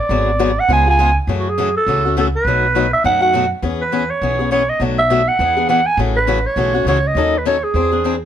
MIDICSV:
0, 0, Header, 1, 4, 480
1, 0, Start_track
1, 0, Tempo, 293542
1, 180, Time_signature, 4, 2, 24, 8
1, 13490, End_track
2, 0, Start_track
2, 0, Title_t, "Clarinet"
2, 0, Program_c, 0, 71
2, 0, Note_on_c, 0, 74, 91
2, 979, Note_on_c, 0, 78, 88
2, 1004, Note_off_c, 0, 74, 0
2, 1163, Note_off_c, 0, 78, 0
2, 1190, Note_on_c, 0, 80, 99
2, 1420, Note_off_c, 0, 80, 0
2, 1477, Note_on_c, 0, 80, 97
2, 1894, Note_off_c, 0, 80, 0
2, 2286, Note_on_c, 0, 66, 60
2, 2437, Note_on_c, 0, 68, 82
2, 2461, Note_off_c, 0, 66, 0
2, 2881, Note_off_c, 0, 68, 0
2, 2891, Note_on_c, 0, 69, 88
2, 3512, Note_off_c, 0, 69, 0
2, 3596, Note_on_c, 0, 69, 75
2, 3706, Note_off_c, 0, 69, 0
2, 3855, Note_on_c, 0, 71, 89
2, 4729, Note_off_c, 0, 71, 0
2, 4797, Note_on_c, 0, 76, 93
2, 4978, Note_off_c, 0, 76, 0
2, 4997, Note_on_c, 0, 78, 100
2, 5243, Note_off_c, 0, 78, 0
2, 5268, Note_on_c, 0, 78, 91
2, 5708, Note_off_c, 0, 78, 0
2, 6239, Note_on_c, 0, 71, 81
2, 6707, Note_on_c, 0, 73, 88
2, 6732, Note_off_c, 0, 71, 0
2, 7382, Note_off_c, 0, 73, 0
2, 7392, Note_on_c, 0, 73, 87
2, 7676, Note_on_c, 0, 75, 86
2, 7700, Note_off_c, 0, 73, 0
2, 7871, Note_off_c, 0, 75, 0
2, 8154, Note_on_c, 0, 76, 95
2, 8636, Note_on_c, 0, 78, 105
2, 8661, Note_off_c, 0, 76, 0
2, 9311, Note_off_c, 0, 78, 0
2, 9323, Note_on_c, 0, 78, 94
2, 9587, Note_on_c, 0, 80, 101
2, 9612, Note_off_c, 0, 78, 0
2, 9787, Note_off_c, 0, 80, 0
2, 10079, Note_on_c, 0, 71, 92
2, 10572, Note_on_c, 0, 73, 92
2, 10596, Note_off_c, 0, 71, 0
2, 11238, Note_off_c, 0, 73, 0
2, 11263, Note_on_c, 0, 73, 91
2, 11569, Note_on_c, 0, 75, 88
2, 11594, Note_off_c, 0, 73, 0
2, 12067, Note_on_c, 0, 71, 72
2, 12092, Note_off_c, 0, 75, 0
2, 12220, Note_on_c, 0, 73, 81
2, 12244, Note_off_c, 0, 71, 0
2, 12491, Note_on_c, 0, 68, 78
2, 12515, Note_off_c, 0, 73, 0
2, 13432, Note_off_c, 0, 68, 0
2, 13490, End_track
3, 0, Start_track
3, 0, Title_t, "Steel-string acoustic guitar"
3, 0, Program_c, 1, 25
3, 167, Note_on_c, 1, 50, 65
3, 174, Note_on_c, 1, 54, 69
3, 178, Note_on_c, 1, 59, 67
3, 182, Note_on_c, 1, 66, 67
3, 189, Note_on_c, 1, 68, 64
3, 478, Note_off_c, 1, 50, 0
3, 482, Note_off_c, 1, 54, 0
3, 484, Note_off_c, 1, 59, 0
3, 486, Note_off_c, 1, 66, 0
3, 490, Note_off_c, 1, 68, 0
3, 642, Note_on_c, 1, 50, 83
3, 647, Note_on_c, 1, 54, 89
3, 651, Note_on_c, 1, 66, 86
3, 655, Note_on_c, 1, 68, 83
3, 656, Note_on_c, 1, 59, 83
3, 818, Note_off_c, 1, 50, 0
3, 820, Note_off_c, 1, 54, 0
3, 822, Note_off_c, 1, 66, 0
3, 824, Note_off_c, 1, 68, 0
3, 825, Note_off_c, 1, 59, 0
3, 1129, Note_on_c, 1, 49, 65
3, 1139, Note_on_c, 1, 59, 65
3, 1143, Note_on_c, 1, 56, 61
3, 1152, Note_on_c, 1, 65, 69
3, 1153, Note_on_c, 1, 68, 75
3, 1391, Note_off_c, 1, 68, 0
3, 1396, Note_off_c, 1, 49, 0
3, 1402, Note_off_c, 1, 59, 0
3, 1403, Note_off_c, 1, 56, 0
3, 1404, Note_off_c, 1, 65, 0
3, 1410, Note_on_c, 1, 68, 54
3, 1424, Note_on_c, 1, 65, 52
3, 1443, Note_on_c, 1, 59, 46
3, 1602, Note_off_c, 1, 59, 0
3, 1610, Note_off_c, 1, 68, 0
3, 1613, Note_on_c, 1, 49, 77
3, 1617, Note_off_c, 1, 65, 0
3, 1617, Note_on_c, 1, 56, 82
3, 1621, Note_on_c, 1, 59, 80
3, 1633, Note_on_c, 1, 65, 87
3, 1634, Note_on_c, 1, 68, 93
3, 1783, Note_off_c, 1, 49, 0
3, 1785, Note_off_c, 1, 56, 0
3, 1787, Note_off_c, 1, 59, 0
3, 1793, Note_off_c, 1, 65, 0
3, 1794, Note_off_c, 1, 68, 0
3, 2104, Note_on_c, 1, 49, 70
3, 2110, Note_on_c, 1, 52, 66
3, 2114, Note_on_c, 1, 57, 65
3, 2118, Note_on_c, 1, 61, 68
3, 2118, Note_on_c, 1, 66, 71
3, 2407, Note_off_c, 1, 49, 0
3, 2410, Note_off_c, 1, 52, 0
3, 2412, Note_off_c, 1, 57, 0
3, 2414, Note_off_c, 1, 61, 0
3, 2414, Note_off_c, 1, 66, 0
3, 2579, Note_on_c, 1, 49, 83
3, 2587, Note_on_c, 1, 52, 80
3, 2589, Note_on_c, 1, 61, 85
3, 2590, Note_on_c, 1, 57, 87
3, 2605, Note_on_c, 1, 66, 82
3, 2746, Note_off_c, 1, 49, 0
3, 2750, Note_off_c, 1, 52, 0
3, 2751, Note_off_c, 1, 61, 0
3, 2752, Note_off_c, 1, 57, 0
3, 2759, Note_off_c, 1, 66, 0
3, 3069, Note_on_c, 1, 49, 62
3, 3069, Note_on_c, 1, 52, 68
3, 3077, Note_on_c, 1, 57, 70
3, 3084, Note_on_c, 1, 61, 71
3, 3087, Note_on_c, 1, 66, 72
3, 3326, Note_off_c, 1, 49, 0
3, 3326, Note_off_c, 1, 52, 0
3, 3331, Note_off_c, 1, 57, 0
3, 3334, Note_off_c, 1, 61, 0
3, 3335, Note_off_c, 1, 66, 0
3, 3352, Note_on_c, 1, 66, 54
3, 3371, Note_on_c, 1, 61, 50
3, 3386, Note_on_c, 1, 57, 47
3, 3535, Note_off_c, 1, 57, 0
3, 3535, Note_off_c, 1, 61, 0
3, 3541, Note_off_c, 1, 66, 0
3, 3544, Note_on_c, 1, 49, 78
3, 3546, Note_on_c, 1, 52, 77
3, 3554, Note_on_c, 1, 61, 87
3, 3555, Note_on_c, 1, 57, 93
3, 3560, Note_on_c, 1, 66, 83
3, 3709, Note_off_c, 1, 49, 0
3, 3710, Note_off_c, 1, 52, 0
3, 3714, Note_off_c, 1, 57, 0
3, 3714, Note_off_c, 1, 61, 0
3, 3716, Note_off_c, 1, 66, 0
3, 4042, Note_on_c, 1, 47, 65
3, 4045, Note_on_c, 1, 54, 65
3, 4052, Note_on_c, 1, 57, 68
3, 4057, Note_on_c, 1, 63, 65
3, 4059, Note_on_c, 1, 66, 76
3, 4336, Note_off_c, 1, 47, 0
3, 4337, Note_off_c, 1, 54, 0
3, 4341, Note_off_c, 1, 57, 0
3, 4344, Note_off_c, 1, 63, 0
3, 4345, Note_off_c, 1, 66, 0
3, 4494, Note_on_c, 1, 47, 79
3, 4504, Note_on_c, 1, 54, 83
3, 4508, Note_on_c, 1, 57, 77
3, 4514, Note_on_c, 1, 66, 82
3, 4518, Note_on_c, 1, 63, 81
3, 4664, Note_off_c, 1, 47, 0
3, 4669, Note_off_c, 1, 54, 0
3, 4671, Note_off_c, 1, 57, 0
3, 4674, Note_off_c, 1, 66, 0
3, 4676, Note_off_c, 1, 63, 0
3, 4974, Note_on_c, 1, 47, 58
3, 4976, Note_on_c, 1, 54, 67
3, 4982, Note_on_c, 1, 57, 68
3, 4989, Note_on_c, 1, 63, 65
3, 4997, Note_on_c, 1, 66, 67
3, 5231, Note_off_c, 1, 66, 0
3, 5239, Note_off_c, 1, 47, 0
3, 5240, Note_off_c, 1, 54, 0
3, 5243, Note_off_c, 1, 57, 0
3, 5246, Note_off_c, 1, 63, 0
3, 5250, Note_on_c, 1, 66, 49
3, 5266, Note_on_c, 1, 63, 51
3, 5281, Note_on_c, 1, 57, 47
3, 5450, Note_off_c, 1, 66, 0
3, 5451, Note_on_c, 1, 47, 80
3, 5454, Note_off_c, 1, 57, 0
3, 5454, Note_off_c, 1, 63, 0
3, 5464, Note_on_c, 1, 54, 77
3, 5473, Note_on_c, 1, 63, 83
3, 5474, Note_on_c, 1, 57, 76
3, 5482, Note_on_c, 1, 66, 82
3, 5622, Note_off_c, 1, 47, 0
3, 5629, Note_off_c, 1, 54, 0
3, 5634, Note_off_c, 1, 57, 0
3, 5634, Note_off_c, 1, 63, 0
3, 5638, Note_off_c, 1, 66, 0
3, 5926, Note_on_c, 1, 52, 59
3, 5936, Note_on_c, 1, 59, 67
3, 5940, Note_on_c, 1, 61, 62
3, 5945, Note_on_c, 1, 68, 72
3, 6238, Note_off_c, 1, 52, 0
3, 6243, Note_off_c, 1, 59, 0
3, 6245, Note_off_c, 1, 61, 0
3, 6248, Note_off_c, 1, 68, 0
3, 6413, Note_on_c, 1, 52, 71
3, 6415, Note_on_c, 1, 59, 75
3, 6422, Note_on_c, 1, 61, 78
3, 6430, Note_on_c, 1, 68, 76
3, 6584, Note_off_c, 1, 52, 0
3, 6584, Note_off_c, 1, 59, 0
3, 6588, Note_off_c, 1, 61, 0
3, 6592, Note_off_c, 1, 68, 0
3, 6896, Note_on_c, 1, 52, 60
3, 6917, Note_on_c, 1, 59, 66
3, 6919, Note_on_c, 1, 61, 74
3, 6921, Note_on_c, 1, 68, 70
3, 7159, Note_off_c, 1, 68, 0
3, 7160, Note_off_c, 1, 52, 0
3, 7170, Note_off_c, 1, 59, 0
3, 7171, Note_off_c, 1, 61, 0
3, 7178, Note_on_c, 1, 68, 50
3, 7200, Note_on_c, 1, 61, 52
3, 7211, Note_on_c, 1, 59, 42
3, 7363, Note_off_c, 1, 59, 0
3, 7370, Note_off_c, 1, 61, 0
3, 7374, Note_off_c, 1, 68, 0
3, 7375, Note_on_c, 1, 52, 76
3, 7383, Note_on_c, 1, 59, 83
3, 7389, Note_on_c, 1, 61, 92
3, 7394, Note_on_c, 1, 68, 82
3, 7544, Note_off_c, 1, 52, 0
3, 7548, Note_off_c, 1, 59, 0
3, 7552, Note_off_c, 1, 61, 0
3, 7554, Note_off_c, 1, 68, 0
3, 7855, Note_on_c, 1, 47, 62
3, 7866, Note_on_c, 1, 54, 69
3, 7872, Note_on_c, 1, 57, 73
3, 7878, Note_on_c, 1, 62, 63
3, 7878, Note_on_c, 1, 66, 71
3, 8162, Note_off_c, 1, 47, 0
3, 8168, Note_off_c, 1, 54, 0
3, 8171, Note_off_c, 1, 57, 0
3, 8174, Note_off_c, 1, 62, 0
3, 8174, Note_off_c, 1, 66, 0
3, 8341, Note_on_c, 1, 47, 84
3, 8346, Note_on_c, 1, 54, 78
3, 8348, Note_on_c, 1, 57, 82
3, 8358, Note_on_c, 1, 62, 84
3, 8361, Note_on_c, 1, 66, 92
3, 8507, Note_off_c, 1, 47, 0
3, 8510, Note_off_c, 1, 54, 0
3, 8511, Note_off_c, 1, 57, 0
3, 8516, Note_off_c, 1, 62, 0
3, 8517, Note_off_c, 1, 66, 0
3, 8827, Note_on_c, 1, 52, 66
3, 8840, Note_on_c, 1, 59, 64
3, 8844, Note_on_c, 1, 62, 70
3, 8851, Note_on_c, 1, 68, 73
3, 9082, Note_off_c, 1, 68, 0
3, 9085, Note_off_c, 1, 52, 0
3, 9092, Note_off_c, 1, 59, 0
3, 9094, Note_off_c, 1, 62, 0
3, 9102, Note_on_c, 1, 68, 62
3, 9114, Note_on_c, 1, 62, 54
3, 9138, Note_on_c, 1, 59, 47
3, 9293, Note_off_c, 1, 59, 0
3, 9296, Note_off_c, 1, 68, 0
3, 9300, Note_on_c, 1, 52, 85
3, 9302, Note_off_c, 1, 62, 0
3, 9312, Note_on_c, 1, 59, 91
3, 9323, Note_on_c, 1, 68, 85
3, 9325, Note_on_c, 1, 62, 85
3, 9467, Note_off_c, 1, 52, 0
3, 9473, Note_off_c, 1, 59, 0
3, 9478, Note_off_c, 1, 68, 0
3, 9479, Note_off_c, 1, 62, 0
3, 9794, Note_on_c, 1, 49, 64
3, 9797, Note_on_c, 1, 57, 73
3, 9800, Note_on_c, 1, 52, 68
3, 9808, Note_on_c, 1, 61, 77
3, 9812, Note_on_c, 1, 66, 72
3, 10092, Note_off_c, 1, 49, 0
3, 10093, Note_off_c, 1, 57, 0
3, 10095, Note_off_c, 1, 52, 0
3, 10099, Note_off_c, 1, 61, 0
3, 10101, Note_off_c, 1, 66, 0
3, 10256, Note_on_c, 1, 49, 81
3, 10262, Note_on_c, 1, 52, 83
3, 10268, Note_on_c, 1, 57, 79
3, 10273, Note_on_c, 1, 66, 96
3, 10276, Note_on_c, 1, 61, 90
3, 10424, Note_off_c, 1, 49, 0
3, 10428, Note_off_c, 1, 52, 0
3, 10431, Note_off_c, 1, 57, 0
3, 10433, Note_off_c, 1, 66, 0
3, 10435, Note_off_c, 1, 61, 0
3, 10740, Note_on_c, 1, 49, 62
3, 10742, Note_on_c, 1, 52, 67
3, 10746, Note_on_c, 1, 57, 72
3, 10754, Note_on_c, 1, 61, 71
3, 10762, Note_on_c, 1, 66, 70
3, 11001, Note_off_c, 1, 49, 0
3, 11001, Note_off_c, 1, 66, 0
3, 11002, Note_off_c, 1, 52, 0
3, 11004, Note_off_c, 1, 57, 0
3, 11008, Note_off_c, 1, 61, 0
3, 11021, Note_on_c, 1, 66, 61
3, 11034, Note_on_c, 1, 61, 52
3, 11052, Note_on_c, 1, 57, 48
3, 11215, Note_off_c, 1, 66, 0
3, 11222, Note_off_c, 1, 61, 0
3, 11228, Note_on_c, 1, 49, 83
3, 11230, Note_off_c, 1, 57, 0
3, 11245, Note_on_c, 1, 52, 89
3, 11248, Note_on_c, 1, 57, 82
3, 11250, Note_on_c, 1, 61, 87
3, 11259, Note_on_c, 1, 66, 87
3, 11390, Note_off_c, 1, 49, 0
3, 11399, Note_off_c, 1, 52, 0
3, 11400, Note_off_c, 1, 57, 0
3, 11401, Note_off_c, 1, 61, 0
3, 11406, Note_off_c, 1, 66, 0
3, 11715, Note_on_c, 1, 54, 66
3, 11716, Note_on_c, 1, 51, 68
3, 11724, Note_on_c, 1, 61, 74
3, 11732, Note_on_c, 1, 63, 72
3, 11740, Note_on_c, 1, 69, 80
3, 12012, Note_off_c, 1, 51, 0
3, 12012, Note_off_c, 1, 54, 0
3, 12017, Note_off_c, 1, 61, 0
3, 12020, Note_off_c, 1, 63, 0
3, 12025, Note_off_c, 1, 69, 0
3, 12190, Note_on_c, 1, 51, 85
3, 12198, Note_on_c, 1, 61, 90
3, 12201, Note_on_c, 1, 54, 81
3, 12208, Note_on_c, 1, 63, 88
3, 12211, Note_on_c, 1, 69, 82
3, 12351, Note_off_c, 1, 51, 0
3, 12355, Note_off_c, 1, 61, 0
3, 12357, Note_off_c, 1, 54, 0
3, 12360, Note_off_c, 1, 63, 0
3, 12362, Note_off_c, 1, 69, 0
3, 12670, Note_on_c, 1, 52, 59
3, 12680, Note_on_c, 1, 60, 66
3, 12690, Note_on_c, 1, 62, 68
3, 12698, Note_on_c, 1, 68, 71
3, 12922, Note_off_c, 1, 68, 0
3, 12927, Note_off_c, 1, 52, 0
3, 12932, Note_off_c, 1, 60, 0
3, 12937, Note_off_c, 1, 62, 0
3, 12942, Note_on_c, 1, 68, 59
3, 12956, Note_on_c, 1, 62, 55
3, 12968, Note_on_c, 1, 60, 48
3, 13136, Note_off_c, 1, 68, 0
3, 13142, Note_off_c, 1, 60, 0
3, 13143, Note_off_c, 1, 62, 0
3, 13150, Note_on_c, 1, 52, 76
3, 13162, Note_on_c, 1, 60, 84
3, 13172, Note_on_c, 1, 62, 89
3, 13175, Note_on_c, 1, 68, 80
3, 13312, Note_off_c, 1, 52, 0
3, 13318, Note_off_c, 1, 60, 0
3, 13322, Note_off_c, 1, 62, 0
3, 13324, Note_off_c, 1, 68, 0
3, 13490, End_track
4, 0, Start_track
4, 0, Title_t, "Upright bass"
4, 0, Program_c, 2, 32
4, 149, Note_on_c, 2, 32, 84
4, 929, Note_off_c, 2, 32, 0
4, 1121, Note_on_c, 2, 37, 86
4, 1896, Note_off_c, 2, 37, 0
4, 2082, Note_on_c, 2, 42, 82
4, 2857, Note_off_c, 2, 42, 0
4, 3051, Note_on_c, 2, 37, 81
4, 3823, Note_off_c, 2, 37, 0
4, 4000, Note_on_c, 2, 35, 81
4, 4776, Note_off_c, 2, 35, 0
4, 4976, Note_on_c, 2, 42, 78
4, 5745, Note_off_c, 2, 42, 0
4, 5928, Note_on_c, 2, 40, 82
4, 6701, Note_off_c, 2, 40, 0
4, 6893, Note_on_c, 2, 35, 80
4, 7663, Note_off_c, 2, 35, 0
4, 7844, Note_on_c, 2, 35, 86
4, 8618, Note_off_c, 2, 35, 0
4, 8814, Note_on_c, 2, 40, 83
4, 9584, Note_off_c, 2, 40, 0
4, 9766, Note_on_c, 2, 33, 88
4, 10539, Note_off_c, 2, 33, 0
4, 10727, Note_on_c, 2, 35, 78
4, 11140, Note_off_c, 2, 35, 0
4, 11197, Note_on_c, 2, 37, 80
4, 11614, Note_off_c, 2, 37, 0
4, 11687, Note_on_c, 2, 39, 82
4, 12460, Note_off_c, 2, 39, 0
4, 12654, Note_on_c, 2, 40, 79
4, 13424, Note_off_c, 2, 40, 0
4, 13490, End_track
0, 0, End_of_file